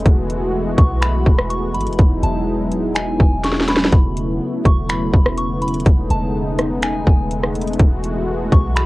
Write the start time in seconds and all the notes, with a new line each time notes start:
Already playing: G#3 A3
0.05 E1 E3 B3 F#4, kick, closed hi-hat
0.30 closed hi-hat
0.78 B1 C#6, kick, closed hi-hat
1.02 B5, finger snap, closed hi-hat
1.26 E1, kick
1.39 cross-stick
1.50 C#6, closed hi-hat
1.74 G#1 B5, closed hi-hat
1.81 closed hi-hat
1.87 E1, closed hi-hat
1.93 closed hi-hat
1.99 E1 F#3 G#3 D#4 E4, kick, closed hi-hat
2.23 E1 A5, closed hi-hat
2.72 D#1, closed hi-hat
2.95 E1 G#5, finger snap, closed hi-hat
3.20 E1, kick
3.44 C#6, snare, closed hi-hat
3.52 snare
3.60 snare
3.68 B5, snare, closed hi-hat
3.76 snare
3.85 snare
3.92 E1 C#3 A3 E4, kick, closed hi-hat
4.17 closed hi-hat
4.65 E1 C#6, kick, closed hi-hat
4.89 B5, finger snap, closed hi-hat
5.13 E1, kick
5.26 cross-stick
5.38 C#6, closed hi-hat
5.62 B5, closed hi-hat
5.68 closed hi-hat
5.74 closed hi-hat
5.80 closed hi-hat
5.86 E1 G#3 A3 D#4, kick, closed hi-hat
6.10 E1 A5, closed hi-hat
6.59 cross-stick, closed hi-hat
6.83 G#5, finger snap, closed hi-hat
7.07 E1, kick
7.31 closed hi-hat
7.44 cross-stick
7.55 closed hi-hat
7.61 closed hi-hat
7.68 closed hi-hat
7.73 closed hi-hat
7.79 E1 E3 F#4, kick, closed hi-hat
8.04 closed hi-hat
8.52 B1 C#6, kick, closed hi-hat
8.76 B5, finger snap, closed hi-hat